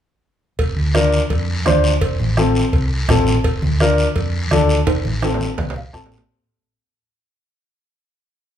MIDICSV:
0, 0, Header, 1, 5, 480
1, 0, Start_track
1, 0, Key_signature, -1, "major"
1, 0, Tempo, 356295
1, 798, Time_signature, 4, 2, 24, 8
1, 11555, End_track
2, 0, Start_track
2, 0, Title_t, "Upright piano"
2, 0, Program_c, 0, 0
2, 1270, Note_on_c, 0, 62, 81
2, 1278, Note_on_c, 0, 65, 79
2, 1283, Note_on_c, 0, 70, 84
2, 1610, Note_off_c, 0, 62, 0
2, 1614, Note_off_c, 0, 65, 0
2, 1617, Note_off_c, 0, 70, 0
2, 2225, Note_on_c, 0, 62, 81
2, 2234, Note_on_c, 0, 65, 77
2, 2240, Note_on_c, 0, 72, 91
2, 2568, Note_off_c, 0, 62, 0
2, 2573, Note_off_c, 0, 65, 0
2, 2575, Note_off_c, 0, 72, 0
2, 3199, Note_on_c, 0, 60, 88
2, 3204, Note_on_c, 0, 65, 78
2, 3205, Note_on_c, 0, 69, 86
2, 3535, Note_off_c, 0, 60, 0
2, 3538, Note_off_c, 0, 65, 0
2, 3539, Note_off_c, 0, 69, 0
2, 4157, Note_on_c, 0, 60, 81
2, 4167, Note_on_c, 0, 65, 78
2, 4169, Note_on_c, 0, 69, 94
2, 4495, Note_off_c, 0, 60, 0
2, 4500, Note_off_c, 0, 65, 0
2, 4501, Note_off_c, 0, 69, 0
2, 5125, Note_on_c, 0, 62, 82
2, 5128, Note_on_c, 0, 65, 75
2, 5134, Note_on_c, 0, 70, 90
2, 5460, Note_off_c, 0, 62, 0
2, 5461, Note_off_c, 0, 65, 0
2, 5464, Note_off_c, 0, 70, 0
2, 6080, Note_on_c, 0, 62, 84
2, 6084, Note_on_c, 0, 65, 77
2, 6093, Note_on_c, 0, 69, 96
2, 6417, Note_off_c, 0, 62, 0
2, 6419, Note_off_c, 0, 65, 0
2, 6424, Note_off_c, 0, 69, 0
2, 7045, Note_on_c, 0, 60, 80
2, 7049, Note_on_c, 0, 65, 80
2, 7056, Note_on_c, 0, 69, 88
2, 7380, Note_off_c, 0, 60, 0
2, 7382, Note_off_c, 0, 65, 0
2, 7385, Note_off_c, 0, 69, 0
2, 7767, Note_on_c, 0, 77, 65
2, 7988, Note_off_c, 0, 77, 0
2, 7990, Note_on_c, 0, 60, 83
2, 7993, Note_on_c, 0, 81, 72
2, 7997, Note_on_c, 0, 65, 79
2, 7998, Note_on_c, 0, 69, 87
2, 8332, Note_off_c, 0, 60, 0
2, 8335, Note_off_c, 0, 65, 0
2, 8336, Note_off_c, 0, 69, 0
2, 8443, Note_off_c, 0, 81, 0
2, 11555, End_track
3, 0, Start_track
3, 0, Title_t, "Fingered electric bass"
3, 0, Program_c, 1, 33
3, 793, Note_on_c, 1, 29, 94
3, 987, Note_off_c, 1, 29, 0
3, 1030, Note_on_c, 1, 38, 83
3, 1609, Note_off_c, 1, 38, 0
3, 1753, Note_on_c, 1, 41, 94
3, 2139, Note_off_c, 1, 41, 0
3, 2234, Note_on_c, 1, 38, 86
3, 2620, Note_off_c, 1, 38, 0
3, 2715, Note_on_c, 1, 29, 89
3, 2908, Note_off_c, 1, 29, 0
3, 2959, Note_on_c, 1, 33, 85
3, 3536, Note_off_c, 1, 33, 0
3, 3677, Note_on_c, 1, 36, 96
3, 4062, Note_off_c, 1, 36, 0
3, 4157, Note_on_c, 1, 33, 95
3, 4543, Note_off_c, 1, 33, 0
3, 4639, Note_on_c, 1, 29, 93
3, 4832, Note_off_c, 1, 29, 0
3, 4883, Note_on_c, 1, 38, 80
3, 5459, Note_off_c, 1, 38, 0
3, 5603, Note_on_c, 1, 41, 99
3, 5987, Note_off_c, 1, 41, 0
3, 6082, Note_on_c, 1, 38, 91
3, 6467, Note_off_c, 1, 38, 0
3, 6562, Note_on_c, 1, 29, 95
3, 6754, Note_off_c, 1, 29, 0
3, 6801, Note_on_c, 1, 33, 87
3, 7378, Note_off_c, 1, 33, 0
3, 7518, Note_on_c, 1, 36, 94
3, 7904, Note_off_c, 1, 36, 0
3, 7999, Note_on_c, 1, 33, 88
3, 8384, Note_off_c, 1, 33, 0
3, 11555, End_track
4, 0, Start_track
4, 0, Title_t, "Two-headed folk drums"
4, 795, Note_on_c, 9, 36, 79
4, 929, Note_off_c, 9, 36, 0
4, 1275, Note_on_c, 9, 37, 78
4, 1410, Note_off_c, 9, 37, 0
4, 1754, Note_on_c, 9, 36, 80
4, 1889, Note_off_c, 9, 36, 0
4, 2234, Note_on_c, 9, 37, 76
4, 2369, Note_off_c, 9, 37, 0
4, 2713, Note_on_c, 9, 36, 80
4, 2848, Note_off_c, 9, 36, 0
4, 3196, Note_on_c, 9, 37, 75
4, 3330, Note_off_c, 9, 37, 0
4, 3676, Note_on_c, 9, 36, 82
4, 3811, Note_off_c, 9, 36, 0
4, 4159, Note_on_c, 9, 36, 72
4, 4160, Note_on_c, 9, 37, 79
4, 4294, Note_off_c, 9, 36, 0
4, 4295, Note_off_c, 9, 37, 0
4, 4641, Note_on_c, 9, 36, 88
4, 4776, Note_off_c, 9, 36, 0
4, 5126, Note_on_c, 9, 37, 75
4, 5260, Note_off_c, 9, 37, 0
4, 5602, Note_on_c, 9, 36, 83
4, 5737, Note_off_c, 9, 36, 0
4, 6079, Note_on_c, 9, 37, 83
4, 6213, Note_off_c, 9, 37, 0
4, 6560, Note_on_c, 9, 36, 86
4, 6695, Note_off_c, 9, 36, 0
4, 7039, Note_on_c, 9, 37, 77
4, 7173, Note_off_c, 9, 37, 0
4, 7519, Note_on_c, 9, 36, 79
4, 7654, Note_off_c, 9, 36, 0
4, 7999, Note_on_c, 9, 36, 71
4, 8001, Note_on_c, 9, 37, 85
4, 8134, Note_off_c, 9, 36, 0
4, 8135, Note_off_c, 9, 37, 0
4, 11555, End_track
5, 0, Start_track
5, 0, Title_t, "Drums"
5, 793, Note_on_c, 9, 56, 99
5, 797, Note_on_c, 9, 74, 67
5, 928, Note_off_c, 9, 56, 0
5, 931, Note_off_c, 9, 74, 0
5, 1276, Note_on_c, 9, 73, 68
5, 1278, Note_on_c, 9, 63, 83
5, 1411, Note_off_c, 9, 73, 0
5, 1413, Note_off_c, 9, 63, 0
5, 1515, Note_on_c, 9, 73, 68
5, 1650, Note_off_c, 9, 73, 0
5, 1754, Note_on_c, 9, 74, 71
5, 1755, Note_on_c, 9, 56, 87
5, 1889, Note_off_c, 9, 56, 0
5, 1889, Note_off_c, 9, 74, 0
5, 2232, Note_on_c, 9, 66, 72
5, 2235, Note_on_c, 9, 73, 71
5, 2238, Note_on_c, 9, 63, 88
5, 2367, Note_off_c, 9, 66, 0
5, 2370, Note_off_c, 9, 73, 0
5, 2373, Note_off_c, 9, 63, 0
5, 2478, Note_on_c, 9, 73, 68
5, 2612, Note_off_c, 9, 73, 0
5, 2714, Note_on_c, 9, 56, 102
5, 2716, Note_on_c, 9, 74, 68
5, 2849, Note_off_c, 9, 56, 0
5, 2850, Note_off_c, 9, 74, 0
5, 2961, Note_on_c, 9, 63, 65
5, 3096, Note_off_c, 9, 63, 0
5, 3198, Note_on_c, 9, 73, 68
5, 3200, Note_on_c, 9, 63, 83
5, 3333, Note_off_c, 9, 73, 0
5, 3335, Note_off_c, 9, 63, 0
5, 3439, Note_on_c, 9, 73, 69
5, 3573, Note_off_c, 9, 73, 0
5, 3679, Note_on_c, 9, 74, 74
5, 3680, Note_on_c, 9, 56, 80
5, 3814, Note_off_c, 9, 74, 0
5, 3815, Note_off_c, 9, 56, 0
5, 4159, Note_on_c, 9, 63, 87
5, 4159, Note_on_c, 9, 64, 96
5, 4159, Note_on_c, 9, 66, 68
5, 4162, Note_on_c, 9, 73, 70
5, 4294, Note_off_c, 9, 63, 0
5, 4294, Note_off_c, 9, 64, 0
5, 4294, Note_off_c, 9, 66, 0
5, 4297, Note_off_c, 9, 73, 0
5, 4401, Note_on_c, 9, 73, 71
5, 4405, Note_on_c, 9, 64, 66
5, 4536, Note_off_c, 9, 73, 0
5, 4539, Note_off_c, 9, 64, 0
5, 4637, Note_on_c, 9, 74, 66
5, 4640, Note_on_c, 9, 56, 107
5, 4772, Note_off_c, 9, 74, 0
5, 4774, Note_off_c, 9, 56, 0
5, 4883, Note_on_c, 9, 63, 72
5, 5018, Note_off_c, 9, 63, 0
5, 5123, Note_on_c, 9, 73, 68
5, 5129, Note_on_c, 9, 63, 83
5, 5258, Note_off_c, 9, 73, 0
5, 5264, Note_off_c, 9, 63, 0
5, 5364, Note_on_c, 9, 73, 67
5, 5499, Note_off_c, 9, 73, 0
5, 5600, Note_on_c, 9, 56, 90
5, 5602, Note_on_c, 9, 74, 68
5, 5734, Note_off_c, 9, 56, 0
5, 5737, Note_off_c, 9, 74, 0
5, 6083, Note_on_c, 9, 63, 94
5, 6086, Note_on_c, 9, 73, 75
5, 6218, Note_off_c, 9, 63, 0
5, 6221, Note_off_c, 9, 73, 0
5, 6322, Note_on_c, 9, 73, 75
5, 6457, Note_off_c, 9, 73, 0
5, 6559, Note_on_c, 9, 56, 104
5, 6559, Note_on_c, 9, 65, 72
5, 6564, Note_on_c, 9, 74, 70
5, 6694, Note_off_c, 9, 56, 0
5, 6694, Note_off_c, 9, 65, 0
5, 6699, Note_off_c, 9, 74, 0
5, 6804, Note_on_c, 9, 63, 69
5, 6938, Note_off_c, 9, 63, 0
5, 7037, Note_on_c, 9, 65, 90
5, 7042, Note_on_c, 9, 63, 81
5, 7046, Note_on_c, 9, 73, 68
5, 7172, Note_off_c, 9, 65, 0
5, 7177, Note_off_c, 9, 63, 0
5, 7181, Note_off_c, 9, 73, 0
5, 7197, Note_on_c, 9, 66, 87
5, 7279, Note_on_c, 9, 63, 79
5, 7286, Note_on_c, 9, 73, 73
5, 7331, Note_off_c, 9, 66, 0
5, 7413, Note_off_c, 9, 63, 0
5, 7421, Note_off_c, 9, 73, 0
5, 7516, Note_on_c, 9, 56, 86
5, 7516, Note_on_c, 9, 63, 88
5, 7516, Note_on_c, 9, 66, 104
5, 7525, Note_on_c, 9, 74, 71
5, 7651, Note_off_c, 9, 56, 0
5, 7651, Note_off_c, 9, 63, 0
5, 7651, Note_off_c, 9, 66, 0
5, 7659, Note_off_c, 9, 74, 0
5, 7680, Note_on_c, 9, 66, 102
5, 7759, Note_on_c, 9, 64, 74
5, 7815, Note_off_c, 9, 66, 0
5, 7894, Note_off_c, 9, 64, 0
5, 8003, Note_on_c, 9, 73, 68
5, 8138, Note_off_c, 9, 73, 0
5, 8161, Note_on_c, 9, 66, 93
5, 8242, Note_on_c, 9, 73, 68
5, 8243, Note_on_c, 9, 64, 81
5, 8296, Note_off_c, 9, 66, 0
5, 8323, Note_on_c, 9, 66, 79
5, 8376, Note_off_c, 9, 73, 0
5, 8378, Note_off_c, 9, 64, 0
5, 8457, Note_off_c, 9, 66, 0
5, 11555, End_track
0, 0, End_of_file